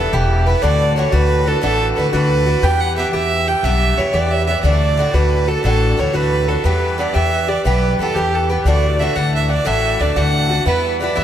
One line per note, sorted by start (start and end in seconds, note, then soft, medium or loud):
0.00 0.13 G2 medium
0.00 0.13 E3 soft
0.00 0.12 B3 medium
0.00 0.12 E4 medium
0.00 0.15 A4 medium
0.13 0.53 E1 loud
0.13 0.48 G2 medium
0.13 0.49 E3 medium
0.13 0.47 B3 medium
0.13 0.46 E4 medium
0.13 0.48 G4 medium
0.46 0.61 E3 soft
0.46 0.63 B3 soft
0.46 0.63 E4 medium
0.46 0.63 B4 medium
0.62 1.04 D2 loud
0.62 0.95 A2 medium
0.62 0.97 E3 medium
0.62 0.96 D4 medium
0.62 0.98 F#4 medium
0.62 0.97 D5 loud
0.96 1.12 A2 medium
0.96 1.12 E3 medium
0.96 1.11 D4 medium
0.96 1.11 F#4 medium
0.96 1.15 C#5 medium
1.12 1.53 D2 loud
1.12 1.48 A2 medium
1.12 1.48 E3 medium
1.12 1.46 D4 medium
1.12 1.45 F#4 medium
1.12 1.49 B4 medium
1.46 1.62 E3 soft
1.46 1.62 D4 soft
1.46 1.62 F#4 soft
1.46 1.62 A4 medium
1.62 1.91 A1 medium
1.62 1.95 A2 medium
1.62 1.96 E3 medium
1.62 1.97 D4 medium
1.62 1.98 F#4 medium
1.62 1.93 A4 loud
1.93 2.13 A2 soft
1.93 1.98 A4 medium
1.93 2.12 B4 medium
1.97 2.10 D2 medium
1.97 2.13 E3 medium
1.97 2.12 D4 medium
1.97 2.12 F#4 medium
2.12 2.53 D2 loud
2.12 2.48 A2 medium
2.12 2.49 E3 medium
2.12 2.47 D4 medium
2.12 2.45 F#4 medium
2.12 2.65 B4 loud
2.46 2.62 E3 soft
2.46 2.63 D4 soft
2.46 2.63 F#4 medium
2.62 3.03 E2 loud
2.62 2.95 G2 medium
2.62 2.97 E3 medium
2.62 2.97 B3 medium
2.62 2.98 G4 medium
2.62 2.82 G5 loud
2.81 2.96 F#5 loud
2.96 3.13 G2 medium
2.96 3.13 E3 medium
2.96 3.13 B3 medium
2.96 3.12 G4 medium
2.96 3.12 E5 medium
3.13 3.53 E2 medium
3.13 3.48 G2 soft
3.13 3.50 E3 medium
3.13 3.48 B3 medium
3.13 3.46 G4 medium
3.13 3.49 E5 loud
3.47 3.64 E3 soft
3.47 3.64 B3 soft
3.47 3.63 G4 soft
3.47 3.65 G5 loud
3.63 3.91 B1 medium
3.63 3.96 G2 medium
3.63 3.98 E3 medium
3.63 3.98 B3 medium
3.63 3.99 G4 medium
3.63 3.99 E5 loud
3.97 4.11 E2 medium
3.97 4.13 G2 medium
3.97 4.14 E3 medium
3.97 4.13 B3 medium
3.97 4.12 G4 medium
3.97 4.14 C#5 medium
4.12 4.54 E2 loud
4.12 4.49 G2 medium
4.12 4.49 E3 medium
4.12 4.48 B3 medium
4.12 4.46 G4 medium
4.12 4.32 D5 medium
4.31 4.46 E5 medium
4.46 4.63 E3 soft
4.46 4.64 B3 soft
4.46 4.63 G4 soft
4.46 4.62 E5 medium
4.63 5.04 D2 medium
4.63 4.96 A2 medium
4.63 4.98 E3 medium
4.63 4.98 D4 medium
4.63 4.99 F#4 medium
4.63 5.15 D5 medium
4.97 5.14 A2 medium
4.97 5.14 E3 medium
4.97 5.13 D4 medium
4.97 5.13 F#4 medium
5.14 5.54 D2 medium
5.14 5.49 A2 soft
5.14 5.50 E3 soft
5.14 5.48 D4 soft
5.14 5.46 F#4 medium
5.14 5.50 B4 medium
5.48 5.64 E3 soft
5.48 5.64 D4 soft
5.48 5.64 F#4 soft
5.48 5.64 A4 medium
5.64 5.92 A1 medium
5.64 5.96 A2 medium
5.64 5.98 E3 medium
5.64 5.98 D4 medium
5.64 5.99 F#4 medium
5.64 6.01 A4 medium
5.97 6.12 D2 medium
5.97 6.14 A2 medium
5.97 6.14 E3 medium
5.97 6.13 D4 medium
5.97 6.12 F#4 medium
5.97 6.16 C#5 medium
6.13 6.55 D2 medium
6.13 6.49 A2 medium
6.13 6.51 E3 medium
6.13 6.49 D4 medium
6.13 6.47 F#4 medium
6.13 6.50 B4 loud
6.48 6.64 E3 soft
6.48 6.65 D4 medium
6.48 6.64 F#4 medium
6.48 6.66 A4 medium
6.64 7.05 E2 medium
6.64 6.97 G2 medium
6.64 6.99 E3 medium
6.64 6.99 B3 medium
6.64 7.00 G4 medium
6.64 7.01 B4 medium
6.98 7.14 G2 medium
6.98 7.14 E3 medium
6.98 7.14 B3 medium
6.98 7.13 G4 medium
6.98 7.15 D5 medium
7.14 7.55 E2 medium
7.14 7.50 G2 soft
7.14 7.51 E3 medium
7.14 7.49 B3 medium
7.14 7.47 G4 medium
7.14 7.50 E5 loud
7.48 7.64 E3 soft
7.48 7.65 B3 soft
7.48 7.65 G4 soft
7.48 7.65 D5 medium
7.65 7.93 B1 loud
7.65 7.98 G2 medium
7.65 8.00 E3 medium
7.65 8.00 B3 medium
7.65 8.00 G4 medium
7.65 7.97 B4 medium
7.99 8.12 E2 medium
7.99 8.15 G2 medium
7.99 8.16 E3 soft
7.99 8.15 B3 medium
7.99 8.15 G4 medium
7.99 8.16 A4 medium
8.14 8.56 E2 loud
8.14 8.51 G2 soft
8.14 8.52 E3 medium
8.14 8.50 B3 medium
8.14 8.36 G4 loud
8.14 8.48 G4 medium
8.35 8.50 A4 medium
8.49 8.65 E3 soft
8.49 8.66 B3 medium
8.49 8.66 G4 medium
8.49 8.65 B4 medium
8.65 9.06 D2 medium
8.65 8.98 A2 medium
8.65 9.00 E3 medium
8.65 9.00 D4 medium
8.65 9.01 F#4 medium
8.65 9.01 D5 medium
8.99 9.16 A2 medium
8.99 9.16 E3 medium
8.99 9.15 D4 medium
8.99 9.14 F#4 medium
8.99 9.17 E5 medium
9.16 9.56 D2 medium
9.16 9.51 A2 soft
9.16 9.52 E3 medium
9.16 9.50 D4 medium
9.16 9.49 F#4 medium
9.16 9.34 F#5 medium
9.34 9.49 E5 medium
9.50 9.64 E3 soft
9.50 9.65 D4 soft
9.50 9.66 F#4 soft
9.50 9.68 D5 medium
9.65 9.94 A1 medium
9.65 9.98 A2 medium
9.65 10.00 E3 medium
9.65 10.00 D4 medium
9.65 10.01 F#4 medium
9.65 10.02 E5 loud
10.00 10.13 D2 medium
10.00 10.16 A2 medium
10.00 10.16 E3 medium
10.00 10.15 D4 medium
10.00 10.15 F#4 medium
10.00 10.18 D5 medium
10.16 10.57 D2 loud
10.16 10.52 A2 medium
10.16 10.52 E3 medium
10.16 10.50 D4 medium
10.16 10.49 F#4 medium
10.16 10.66 F#5 loud
10.50 10.65 E3 soft
10.50 10.66 D4 soft
10.50 10.66 F#4 soft
10.65 11.07 E2 medium
10.65 10.99 G2 medium
10.65 11.01 E3 medium
10.65 11.02 B3 medium
10.65 11.03 E4 medium
10.65 10.99 B4 medium
11.01 11.16 G2 medium
11.01 11.16 E3 medium
11.01 11.15 B3 medium
11.01 11.14 E4 medium
11.01 11.18 D5 medium
11.15 11.24 E2 medium
11.15 11.24 G2 soft
11.15 11.24 E3 medium
11.15 11.24 B3 medium
11.15 11.24 E4 medium
11.15 11.24 E5 loud